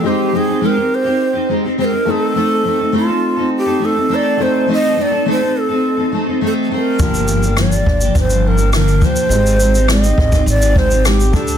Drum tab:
SH |----------------|----------------|----------------|xxxxxx-xxx-xxxxx|
SD |----------------|----------------|----------------|----r-------r---|
BD |----------------|----------------|----------------|o-----o-o-----o-|

SH |xxxxxx-xxx-xxxxx|
SD |----r-------r---|
BD |------oo--o---o-|